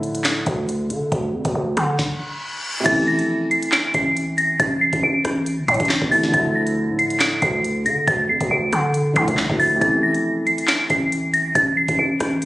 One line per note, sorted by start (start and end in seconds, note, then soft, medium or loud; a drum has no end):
0.00 0.44 A2 loud
0.00 2.14 D3 medium
0.00 2.16 F3 medium
0.00 2.17 A3 medium
0.00 2.19 E4 medium
0.00 closed hi-hat soft
0.15 closed hi-hat medium
0.24 snare loud
0.24 clap loud
0.24 closed hi-hat medium
0.46 0.92 D2 loud
0.46 kick loud
0.46 closed hi-hat medium
0.69 closed hi-hat medium
0.90 1.11 D3 loud
0.90 closed hi-hat medium
1.12 1.35 D2 loud
1.12 kick loud
1.12 closed hi-hat medium
1.34 1.45 F2 loud
1.45 1.55 D2 loud
1.45 kick medium
1.45 closed hi-hat medium
1.55 1.76 D2 loud
1.77 1.98 D3 loud
1.77 cross-stick medium
1.77 closed hi-hat medium
1.99 kick loud
1.99 snare medium
1.99 reverse cymbal medium
2.80 6.05 C3 medium
2.80 6.07 E3 medium
2.86 3.21 A1 loud
2.86 6.09 A3 medium
2.86 3.06 A6 loud
2.86 kick loud
2.86 closed hi-hat medium
2.86 crash loud
2.91 6.11 E4 medium
3.07 3.48 A#6 medium
3.19 3.37 A#1 loud
3.19 closed hi-hat medium
3.35 3.50 A1 loud
3.51 3.71 C7 medium
3.51 closed hi-hat soft
3.63 closed hi-hat medium
3.72 3.93 D7 medium
3.72 snare loud
3.72 clap loud
3.72 closed hi-hat medium
3.94 4.57 A1 loud
3.94 4.35 C7 medium
3.94 kick loud
3.94 closed hi-hat medium
4.17 closed hi-hat medium
4.38 4.58 A#6 medium
4.38 closed hi-hat medium
4.60 4.92 A1 loud
4.60 4.80 A6 loud
4.60 kick loud
4.60 closed hi-hat medium
4.81 5.02 C7 medium
4.93 5.03 A1 loud
4.93 kick medium
4.93 closed hi-hat medium
5.03 5.24 A1 loud
5.03 5.65 D7 medium
5.25 5.60 A1 loud
5.25 cross-stick loud
5.25 closed hi-hat medium
5.46 closed hi-hat medium
5.58 5.68 G1 loud
5.68 5.79 A2 loud
5.68 6.09 C7 medium
5.68 kick loud
5.68 closed hi-hat medium
5.74 closed hi-hat medium
5.80 6.01 A1 loud
5.80 kick loud
5.80 closed hi-hat medium
5.85 closed hi-hat medium
5.89 snare loud
5.89 clap medium
6.02 6.32 G1 loud
6.02 kick loud
6.09 6.32 C3 medium
6.09 6.33 E3 soft
6.09 6.34 A3 medium
6.09 6.32 A6 medium
6.09 open hi-hat medium
6.15 6.35 E4 medium
6.24 snare medium
6.28 9.10 D3 medium
6.28 9.11 F3 medium
6.34 6.90 D2 loud
6.34 9.13 A3 medium
6.34 6.54 A6 loud
6.34 kick loud
6.34 closed hi-hat medium
6.39 9.15 E4 medium
6.55 6.96 A#6 medium
6.67 closed hi-hat medium
6.89 7.40 A2 loud
6.99 7.19 C7 medium
6.99 closed hi-hat soft
7.10 closed hi-hat medium
7.20 7.41 D7 medium
7.20 snare loud
7.20 clap loud
7.20 closed hi-hat medium
7.42 7.87 D2 loud
7.42 7.83 C7 medium
7.42 kick loud
7.42 closed hi-hat medium
7.64 closed hi-hat medium
7.86 8.06 D3 loud
7.86 8.06 A#6 medium
7.86 closed hi-hat medium
8.08 8.31 D2 loud
8.08 8.28 A6 loud
8.08 kick loud
8.08 closed hi-hat medium
8.29 8.40 F2 loud
8.29 8.50 C7 medium
8.41 8.51 D2 loud
8.41 kick medium
8.41 closed hi-hat medium
8.51 8.72 D2 loud
8.51 9.12 D7 medium
8.73 9.15 D3 loud
8.73 cross-stick medium
8.73 closed hi-hat medium
8.94 closed hi-hat medium
9.14 9.80 D3 medium
9.14 9.27 D3 loud
9.14 9.81 F3 soft
9.14 9.82 A3 soft
9.14 9.57 C7 medium
9.14 kick loud
9.14 closed hi-hat medium
9.19 9.83 E4 medium
9.28 9.49 C2 loud
9.28 kick loud
9.28 closed hi-hat medium
9.37 snare loud
9.37 clap medium
9.49 9.80 D2 loud
9.49 kick loud
9.60 9.80 A6 medium
9.60 open hi-hat medium
9.76 12.45 C3 medium
9.76 12.45 E3 medium
9.81 10.16 A1 loud
9.81 12.45 A3 medium
9.81 10.02 A6 loud
9.81 kick loud
9.81 closed hi-hat medium
9.87 12.45 E4 medium
10.03 10.44 A#6 medium
10.14 10.32 A#1 loud
10.14 closed hi-hat medium
10.31 10.46 A1 loud
10.47 10.67 C7 medium
10.47 closed hi-hat soft
10.58 closed hi-hat medium
10.68 10.89 D7 medium
10.68 snare loud
10.68 clap loud
10.68 closed hi-hat medium
10.90 11.53 A1 loud
10.90 11.31 C7 medium
10.90 kick loud
10.90 closed hi-hat medium
11.12 closed hi-hat medium
11.34 11.54 A#6 medium
11.34 closed hi-hat medium
11.55 11.87 A1 loud
11.55 11.76 A6 loud
11.55 kick loud
11.55 closed hi-hat medium
11.77 11.97 C7 medium
11.88 11.98 A1 loud
11.88 kick medium
11.88 closed hi-hat medium
11.99 12.20 A1 loud
11.99 12.45 D7 medium
12.20 12.45 A1 loud
12.20 cross-stick loud
12.20 closed hi-hat medium
12.42 closed hi-hat medium